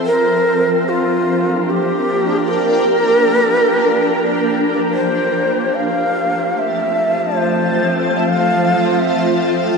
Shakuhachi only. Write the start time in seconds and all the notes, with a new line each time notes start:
0.06 A#4
0.89 F4
1.70 G4
2.52 A#4
4.94 C5
5.75 F5
6.58 E5
7.36 C5
8.17 E5
8.28 F5
8.99 E5